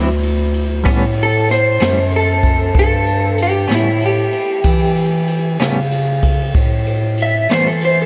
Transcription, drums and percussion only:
0.23 ride medium
0.54 ride medium
0.86 kick loud
0.86 ride medium
1.17 ride medium
1.49 snare soft
1.49 ride medium
1.80 snare loud
1.80 ride medium
2.12 ride medium
2.43 kick medium
2.43 ride medium
2.75 kick loud
2.75 ride medium
3.07 ride medium
3.38 ride medium
3.69 snare loud
3.69 ride medium
4.02 ride medium
4.32 ride medium
4.64 kick loud
4.64 ride medium
4.95 ride medium
5.27 ride medium
5.59 snare loud
5.59 ride medium
5.91 ride medium
6.23 kick medium
6.23 ride medium
6.55 kick loud
6.55 ride medium
6.87 ride medium
7.18 ride medium
7.49 snare loud
7.49 ride medium
7.81 ride medium

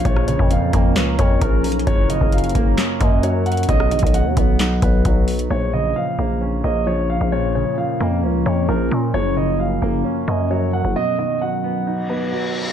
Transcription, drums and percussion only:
0.05 kick loud
0.05 closed hi-hat medium
0.16 cross-stick loud
0.28 closed hi-hat medium
0.39 kick medium
0.51 closed hi-hat medium
0.73 kick medium
0.73 closed hi-hat medium
0.96 snare loud
0.96 clap medium
0.96 closed hi-hat medium
1.19 kick loud
1.19 closed hi-hat medium
1.41 kick medium
1.41 closed hi-hat medium
1.64 closed hi-hat soft
1.64 open hi-hat medium
1.72 closed hi-hat medium
1.79 closed hi-hat medium
1.87 kick loud
1.87 closed hi-hat medium
2.10 closed hi-hat loud
2.21 kick medium
2.32 closed hi-hat medium
2.38 closed hi-hat medium
2.44 closed hi-hat medium
2.49 closed hi-hat medium
2.55 kick medium
2.55 closed hi-hat medium
2.78 snare loud
2.78 clap medium
2.78 closed hi-hat medium
3.01 kick loud
3.01 closed hi-hat medium
3.23 closed hi-hat medium
3.46 closed hi-hat soft
3.52 closed hi-hat soft
3.57 closed hi-hat medium
3.63 closed hi-hat medium
3.69 kick loud
3.69 closed hi-hat medium
3.80 cross-stick loud
3.91 closed hi-hat medium
3.99 kick medium
3.99 closed hi-hat medium
4.07 closed hi-hat medium
4.14 closed hi-hat medium
4.37 kick medium
4.37 closed hi-hat medium
4.59 snare loud
4.59 clap medium
4.59 closed hi-hat medium
4.82 kick loud
4.82 closed hi-hat medium
5.05 kick medium
5.05 closed hi-hat medium
5.28 closed hi-hat soft
5.28 open hi-hat medium
5.39 closed hi-hat medium

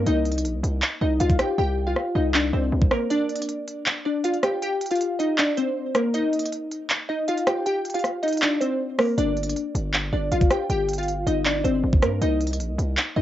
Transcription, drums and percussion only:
0.07 closed hi-hat medium
0.25 closed hi-hat soft
0.32 closed hi-hat medium
0.38 closed hi-hat medium
0.45 closed hi-hat medium
0.64 closed hi-hat medium
0.82 clap loud
0.82 closed hi-hat medium
1.20 closed hi-hat medium
1.30 kick medium
1.30 closed hi-hat soft
1.39 cross-stick loud
1.39 closed hi-hat medium
1.96 cross-stick medium
2.34 clap loud
2.82 kick medium
2.91 cross-stick loud
3.10 closed hi-hat medium
3.29 closed hi-hat soft
3.36 closed hi-hat medium
3.42 closed hi-hat medium
3.49 closed hi-hat medium
3.68 closed hi-hat medium
3.86 clap loud
3.86 closed hi-hat medium
4.24 closed hi-hat medium
4.34 closed hi-hat soft
4.43 cross-stick medium
4.43 closed hi-hat medium
4.62 closed hi-hat medium
4.81 closed hi-hat medium
4.86 closed hi-hat medium
4.91 closed hi-hat medium
4.95 closed hi-hat soft
5.01 closed hi-hat medium
5.20 closed hi-hat medium
5.38 clap loud
5.38 closed hi-hat medium
5.57 closed hi-hat medium
5.95 cross-stick medium
5.95 closed hi-hat medium
6.14 closed hi-hat medium
6.33 closed hi-hat soft
6.39 closed hi-hat medium
6.46 closed hi-hat medium
6.52 closed hi-hat medium
6.71 closed hi-hat medium
6.90 clap loud
6.90 closed hi-hat medium
7.28 closed hi-hat medium
7.37 closed hi-hat soft
7.47 cross-stick loud
7.47 closed hi-hat medium
7.66 closed hi-hat medium
7.85 closed hi-hat medium
7.90 closed hi-hat medium
7.94 closed hi-hat medium
7.99 closed hi-hat medium
8.04 cross-stick medium
8.04 closed hi-hat medium
8.23 closed hi-hat soft
8.28 closed hi-hat medium
8.32 closed hi-hat medium
8.37 closed hi-hat medium
8.42 clap loud
8.61 closed hi-hat medium
8.99 cross-stick loud
8.99 open hi-hat medium
9.18 closed hi-hat medium
9.37 closed hi-hat soft
9.43 closed hi-hat medium
9.49 closed hi-hat medium
9.56 closed hi-hat medium
9.75 closed hi-hat medium
9.94 clap loud
9.94 closed hi-hat medium
10.32 closed hi-hat medium
10.41 kick medium
10.41 closed hi-hat soft
10.50 cross-stick loud
10.50 closed hi-hat medium
10.70 closed hi-hat medium
10.89 closed hi-hat medium
10.93 closed hi-hat medium
10.98 closed hi-hat medium
11.03 closed hi-hat soft
11.08 closed hi-hat medium
11.27 closed hi-hat medium
11.46 clap loud
11.46 closed hi-hat medium
11.65 closed hi-hat medium
11.93 kick medium
12.02 cross-stick loud
12.02 closed hi-hat medium
12.22 closed hi-hat medium
12.41 closed hi-hat soft
12.47 closed hi-hat medium
12.53 closed hi-hat medium
12.60 closed hi-hat medium
12.79 closed hi-hat medium
12.97 clap loud
12.97 closed hi-hat medium

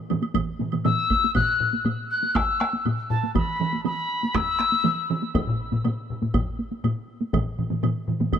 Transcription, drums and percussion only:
0.10 taiko low-mid loud
0.10 taiko mid medium
0.10 taiko high medium
0.10 high woodblock soft
0.23 taiko high medium
0.23 high woodblock soft
0.34 taiko medium
0.34 taiko low-mid medium
0.34 taiko mid medium
0.34 taiko high medium
0.34 high woodblock medium
0.60 taiko low-mid medium
0.60 taiko mid medium
0.60 taiko high medium
0.72 taiko low-mid medium
0.72 taiko mid medium
0.72 taiko high soft
0.72 high woodblock soft
0.85 taiko low-mid loud
0.85 taiko mid loud
0.85 taiko high medium
0.85 high woodblock soft
1.10 taiko medium
1.10 taiko high medium
1.10 high woodblock soft
1.24 taiko high medium
1.35 taiko medium
1.35 taiko low-mid medium
1.35 taiko high medium
1.35 high woodblock soft
1.60 taiko low-mid medium
1.73 taiko high soft
1.85 taiko low-mid medium
1.85 taiko high medium
1.85 high woodblock soft
2.23 taiko high soft
2.35 taiko rim medium
2.35 taiko medium
2.35 taiko high medium
2.35 high woodblock soft
2.60 taiko rim medium
2.60 taiko high soft
2.73 taiko high soft
2.85 taiko low-mid medium
2.85 taiko high medium
2.85 high woodblock soft
3.10 taiko low-mid medium
3.23 taiko high medium
3.35 taiko medium
3.35 taiko mid medium
3.35 taiko high medium
3.35 high woodblock soft
3.60 taiko mid medium
3.73 taiko high soft
3.85 taiko mid medium
3.85 taiko high medium
3.85 high woodblock soft
4.23 taiko high medium
4.35 taiko rim medium
4.35 taiko medium
4.35 taiko high medium
4.35 high woodblock soft
4.59 taiko rim medium
4.59 taiko high soft
4.72 taiko high soft
4.84 taiko mid loud
4.84 taiko high medium
4.84 high woodblock soft
5.10 taiko mid medium
5.23 taiko high soft
5.35 taiko loud
5.35 taiko high medium
5.35 high woodblock soft
5.47 taiko low-mid medium
5.72 taiko low-mid medium
5.72 taiko high soft
5.85 taiko low-mid loud
5.85 taiko high medium
5.85 high woodblock soft
6.10 taiko low-mid medium
6.22 taiko low-mid medium
6.22 taiko high soft
6.34 taiko loud
6.34 taiko low-mid medium
6.34 taiko high medium
6.34 high woodblock medium
6.59 taiko high soft
6.72 taiko high soft
6.84 taiko low-mid medium
6.84 taiko high medium
6.84 high woodblock soft
7.22 taiko high soft
7.33 taiko medium
7.33 taiko low-mid loud
7.33 taiko mid loud
7.33 taiko high medium
7.33 high woodblock medium
7.59 taiko low-mid medium
7.59 taiko mid medium
7.70 taiko low-mid medium
7.70 taiko mid medium
7.70 taiko high soft
7.83 taiko low-mid medium
7.83 taiko mid medium
7.83 taiko high medium
7.83 high woodblock soft
8.08 taiko low-mid medium
8.08 taiko mid medium
8.20 taiko low-mid medium
8.20 taiko mid medium
8.20 taiko high medium
8.32 taiko medium
8.32 taiko high medium
8.32 high woodblock medium

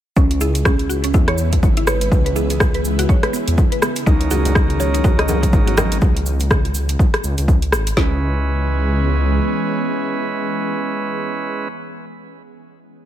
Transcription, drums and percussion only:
0.16 kick loud
0.16 cabasa soft
0.31 closed hi-hat soft
0.41 cabasa medium
0.55 closed hi-hat medium
0.55 cabasa medium
0.65 kick loud
0.65 cross-stick loud
0.65 cabasa soft
0.79 closed hi-hat soft
0.90 cabasa medium
1.04 closed hi-hat medium
1.04 cabasa medium
1.14 kick loud
1.14 cabasa soft
1.28 cross-stick medium
1.28 closed hi-hat soft
1.38 cabasa medium
1.52 kick medium
1.52 closed hi-hat medium
1.52 cabasa soft
1.63 kick loud
1.63 cabasa soft
1.77 closed hi-hat soft
1.87 cross-stick loud
1.87 cabasa medium
2.01 closed hi-hat medium
2.01 cabasa medium
2.12 kick loud
2.12 cabasa soft
2.26 closed hi-hat soft
2.36 cabasa medium
2.50 closed hi-hat medium
2.50 cabasa medium
2.60 kick loud
2.60 cross-stick loud
2.60 cabasa soft
2.74 closed hi-hat soft
2.85 cabasa loud
2.99 closed hi-hat medium
2.99 cabasa medium
3.09 kick loud
3.09 cabasa soft
3.23 cross-stick medium
3.23 closed hi-hat soft
3.33 cabasa loud
3.48 closed hi-hat medium
3.48 cabasa medium
3.58 kick loud
3.58 cabasa soft
3.72 closed hi-hat soft
3.82 cross-stick loud
3.82 cabasa medium
3.96 closed hi-hat medium
3.96 cabasa medium
4.07 kick loud
4.07 muted conga medium
4.07 cabasa soft
4.21 closed hi-hat soft
4.31 low conga medium
4.31 cabasa loud
4.45 closed hi-hat medium
4.45 muted conga soft
4.45 low conga medium
4.45 cabasa medium
4.55 kick loud
4.55 cross-stick loud
4.55 high conga medium
4.55 cabasa soft
4.70 closed hi-hat soft
4.80 muted conga medium
4.80 cabasa loud
4.95 closed hi-hat medium
4.95 cabasa medium
5.04 kick loud
5.04 high conga medium
5.04 djembe tone loud
5.04 cabasa soft
5.18 cross-stick medium
5.18 closed hi-hat soft
5.18 muted conga soft
5.28 high conga loud
5.28 djembe tone medium
5.28 low conga medium
5.28 cabasa loud
5.43 kick medium
5.43 closed hi-hat medium
5.43 cabasa medium
5.53 kick loud
5.53 low conga medium
5.53 cabasa soft
5.68 closed hi-hat soft
5.68 muted conga medium
5.77 cross-stick loud
5.77 djembe slap medium
5.77 high conga loud
5.77 djembe tone medium
5.77 cabasa medium
5.92 closed hi-hat medium
5.92 cabasa medium
6.01 kick loud
6.01 cabasa soft
6.17 closed hi-hat soft
6.26 cabasa loud
6.40 closed hi-hat medium
6.40 cabasa medium
6.50 kick loud
6.50 cross-stick loud
6.50 cabasa soft
6.65 closed hi-hat soft
6.74 cabasa loud
6.89 closed hi-hat medium
6.89 cabasa medium
6.99 kick loud
6.99 cabasa soft
7.14 cross-stick medium
7.14 closed hi-hat soft
7.24 cabasa loud
7.38 closed hi-hat medium
7.38 cabasa medium
7.48 kick loud
7.48 cabasa soft
7.62 closed hi-hat soft
7.72 cross-stick loud
7.72 cabasa medium
7.87 closed hi-hat medium
7.87 cabasa medium
7.97 kick loud
7.97 snare loud

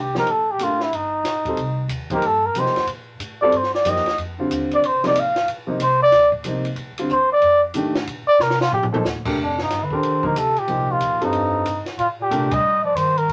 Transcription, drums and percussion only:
0.15 snare soft
0.27 ride soft
0.59 hi-hat pedal medium
0.59 ride medium
0.80 snare soft
0.93 ride medium
1.24 snare soft
1.24 hi-hat pedal medium
1.24 ride medium
1.45 kick soft
1.45 ride soft
1.57 ride medium
1.89 hi-hat pedal medium
1.89 ride medium
2.10 kick soft
2.10 ride soft
2.22 ride soft
2.55 hi-hat pedal medium
2.55 ride medium
2.66 snare soft
2.76 snare soft
2.76 ride soft
2.87 ride medium
3.20 hi-hat pedal medium
3.20 ride medium
3.52 ride soft
3.63 snare soft
3.74 snare soft
3.85 hi-hat pedal medium
3.85 ride medium
3.96 snare soft
4.06 snare soft
4.06 ride soft
4.18 ride soft
4.51 hi-hat pedal medium
4.51 ride medium
4.71 ride soft
4.84 ride medium
5.04 snare soft
5.04 ride soft
5.15 hi-hat pedal medium
5.15 ride medium
5.36 snare soft
5.36 ride soft
5.48 ride medium
5.80 hi-hat pedal medium
5.80 ride medium
6.12 snare soft
6.12 ride medium
6.32 kick soft
6.44 hi-hat pedal medium
6.44 ride medium
6.65 ride soft
6.76 ride soft
6.98 ride medium
7.09 hi-hat pedal medium
7.42 ride medium
7.74 hi-hat pedal medium
7.74 ride medium
7.95 snare medium
7.95 ride soft
8.07 ride medium
8.40 snare soft
8.40 hi-hat pedal medium
8.50 snare medium
8.61 snare medium
8.72 floor tom medium
8.83 floor tom medium
8.94 floor tom medium
9.05 snare medium
9.05 hi-hat pedal medium
9.25 kick medium
9.25 crash medium
9.58 snare soft
9.70 snare soft
9.70 hi-hat pedal medium
9.70 ride medium
9.90 kick soft
10.03 ride medium
10.23 kick soft
10.36 hi-hat pedal medium
10.36 ride medium
10.56 ride soft
10.68 ride soft
11.00 hi-hat pedal soft
11.00 ride medium
11.21 ride soft
11.33 ride soft
11.65 hi-hat pedal medium
11.65 ride medium
11.86 snare soft
11.86 ride soft
11.99 ride soft
12.31 hi-hat pedal soft
12.31 ride medium
12.51 kick medium
12.51 ride medium
12.96 hi-hat pedal soft
12.96 ride medium
13.17 ride soft
13.29 ride soft

